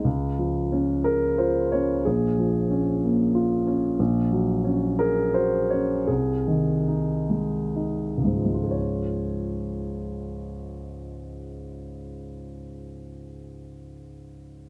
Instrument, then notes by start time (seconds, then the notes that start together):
grand piano
0.05 C#2
0.39 F3
0.72 C#4
1.04 G#4 A#4
1.38 F4 C5
1.72 C#4 C#5
2.05 A#1 G#4
2.38 F3
2.70 C#4
3.03 A#3
3.35 F4
3.67 C#4
3.99 A#1
4.31 F#3
4.65 C#4
4.99 G#4 A#4
5.34 F#4 C5
5.70 C#4 C#5
6.07 C2 G#4
6.48 D#3
6.88 D#4
7.30 G#3
7.76 D#4
8.18 C#2
8.24 G#2 G#3
8.36 F3
8.45 G#3
8.54 F4
8.63 G#4
8.71 C#5